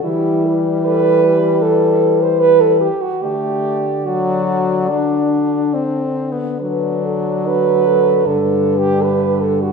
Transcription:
<<
  \new Staff \with { instrumentName = "French horn" } { \time 4/4 \key d \mixolydian \tempo 4 = 73 g'8 b'8 a'8 g'8 b'4. r8 | d''2.~ d''8 r8 | b'8 a'8 fis'8 a'8 b'4 g'4 | }
  \new Staff \with { instrumentName = "French horn" } { \time 4/4 \key d \mixolydian e'8. r16 b'4 a'8. c''16 b'16 a'16 g'16 fis'16 | g'4 fis'2 r4 | d'4 b'4 \tuplet 3/2 { a'4 g'8 } b'8 a'16 fis'16 | }
  \new Staff \with { instrumentName = "French horn" } { \clef bass \time 4/4 \key d \mixolydian g2.~ g8 r8 | a4 fis4 d'4 \tuplet 3/2 { c'4 b8 } | fis2 d2 | }
  \new Staff \with { instrumentName = "French horn" } { \clef bass \time 4/4 \key d \mixolydian e2.~ e8 r8 | d1~ | d2 g,2 | }
>>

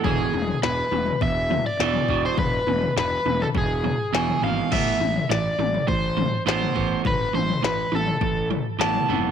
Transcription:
<<
  \new Staff \with { instrumentName = "Overdriven electric guitar" } { \time 4/4 \key a \minor \tempo 4 = 103 gis'4 b'4 e''8. d''4 c''16 | b'4 b'8. a'16 gis'4 gis''8 f''8 | e''4 d''4 c''4 c''4 | b'8 c''8 b'8 a'4 r8 a''4 | }
  \new Staff \with { instrumentName = "Clean electric guitar" } { \clef bass \time 4/4 \key a \minor <e, b, e>8 <e, b,>8 <e, b,>8 <e, b,>8 <e, b,>8 <e, b,>8 <e, b, e>8 <e, b, e>8 | <e, b,>8 <e, b,>8 <e, b,>8 <e, b,>8 <e, b,>8 <e, b,>8 <e, b, e>8 <e, b, e>8 | <a, e b>8 <a, e>8 <a, e>8 <a, e>8 <a, e>8 <a, e>8 <a, e b>8 <a, e b>8 | <a, e>8 <a, e>8 <a, e>8 <a, e>8 <a, e>8 <a, e>8 <a, e b>8 <a, e b>8 | }
  \new Staff \with { instrumentName = "Fingered electric bass" } { \clef bass \time 4/4 \key a \minor e,,8 e,,8 e,,8 e,,8 e,,4 e,,8 e,,8 | e,,8 e,,8 e,,8 e,,8 e,,4 e,,8 gis,,8 | a,,8 a,,8 a,,8 a,,8 a,,4 a,,8 a,,8 | a,,8 a,,8 a,,8 a,,8 a,,4 a,,8 f,,8 | }
  \new DrumStaff \with { instrumentName = "Drums" } \drummode { \time 4/4 <bd tomfh>8 toml16 tomfh16 sn8 toml16 tomfh16 bd8 <tomfh toml>8 sn16 tomfh16 bd8 | <bd tomfh>8 toml16 tomfh16 sn8 toml16 tomfh16 bd8 tomfh8 sn16 tomfh16 toml8 | <cymc bd tomfh>8 toml16 tomfh16 sn8 toml16 tomfh16 bd8 <tomfh toml>8 sn16 tomfh16 bd8 | <bd tomfh>8 toml16 tomfh16 sn8 toml16 tomfh16 bd8 tomfh8 sn16 tomfh16 toml8 | }
>>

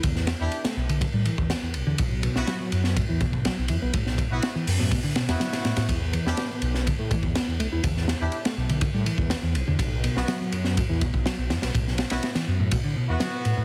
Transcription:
<<
  \new Staff \with { instrumentName = "Horn section" } { \time 4/4 \key e \minor \tempo 4 = 123 r8. <d' e' g'>16 r2. | r8. <b e' fis'>16 r2. | r8. <b e' fis'>16 r4. r16 <b e' fis'>4~ <b e' fis'>16 | r8. <d' e' g'>16 r2. |
r8. <d' e' g'>16 r2. | r8. <b e' fis'>16 r2. | r8. <b e' fis'>16 r4. r16 <b e' fis'>4~ <b e' fis'>16 | }
  \new Staff \with { instrumentName = "Picked electric bass" } { \clef bass \time 4/4 \key e \minor d16 r4 a16 r16 d16 d16 g16 e16 r16 b16 r8 d16 | r8 b,16 r16 fis16 fis8. a,16 e16 b,16 r16 fis16 r16 e16 b16 | a,16 r4 e16 r16 a,16 a,16 d16 b,16 r16 fis16 r8 a,16 | r8 e16 r16 b16 b8. d16 a16 e16 r16 b16 r16 a16 e'16 |
d16 r4 a16 r16 d16 d16 g16 e16 r16 b16 r8 d16 | r8 b,16 r16 fis16 fis8. a,16 e16 b,16 r16 fis16 r16 e16 b16 | a,16 r4 e16 r16 a,16 a,16 d16 b,16 r16 fis16 r8 a,16 | }
  \new Staff \with { instrumentName = "Detuned saw bass" } { \clef bass \time 4/4 \key e \minor e,8 r16 e,16 r8 b,,8 r16 a,16 r16 e,16 r16 e,16 b,,16 e,16 | b,,8 r16 b,,16 r8 fis,8 r16 e,16 r16 b,,16 r16 b,,16 fis,16 b,,16 | b,,8 r16 b,,16 r8 fis,8 b,16 r8 e,16 r8 a,16 r16 | e,8 r16 e,16 r8 b,,8 r16 a,16 r16 e,16 r16 e,16 b,,16 e,16 |
e,8 r16 e,16 r8 b,,8 r16 a,16 r16 e,16 r16 e,16 b,,16 e,16 | b,,8 r16 b,,16 r8 fis,8 r16 e,16 r16 b,,16 r16 b,,16 fis,16 b,,16 | b,,8 r16 b,,16 r8 fis,8 b,16 r8 e,16 r8 a,16 r16 | }
  \new DrumStaff \with { instrumentName = "Drums" } \drummode { \time 4/4 <bd cymr>16 sn16 <cymr sn>8 cymr16 <cymr sn>8 cymr16 <bd cymr>8 cymr16 bd16 <cymr sn>8 cymr8 | <bd cymr>8 cymr16 sn16 <cymr sn>8 cymr16 sn16 <bd cymr>8 <bd cymr>16 bd16 <cymr sn>8 cymr8 | <bd cymr>16 sn16 <bd cymr>8 <cymr sn>8 hho16 sn16 <bd cymr>8 <cymr sn>16 <cymr sn>16 <cymr sn>16 <cymr sn>16 <cymr sn>16 <cymr sn>16 | <bd cymr>8 cymr16 sn16 <cymr sn>8 cymr16 sn16 <bd cymr>8 <bd cymr>16 bd16 <cymr sn>8 cymr8 |
<bd cymr>16 sn16 <cymr sn>8 cymr16 <cymr sn>8 cymr16 <bd cymr>8 cymr16 bd16 <cymr sn>8 cymr8 | <bd cymr>8 cymr16 sn16 <cymr sn>8 cymr16 sn16 <bd cymr>8 <bd cymr>16 bd16 <cymr sn>8 <cymr sn>16 <cymr sn>16 | <bd cymr>16 sn16 <cymr sn>16 <cymr sn>16 <cymr sn>16 <cymr sn>8. <bd cymr>4 <cymr sn>8 cymr8 | }
>>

